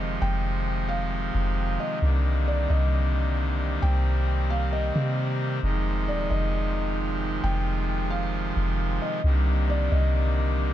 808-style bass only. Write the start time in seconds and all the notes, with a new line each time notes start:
Already playing: F1
0.22 F1
1.34 F1
2.02 C2
2.70 C2
3.83 C2
4.95 C3
5.63 F1
6.08 D#1
6.31 F1
7.44 F1
8.56 F1
9.24 C2
9.92 C2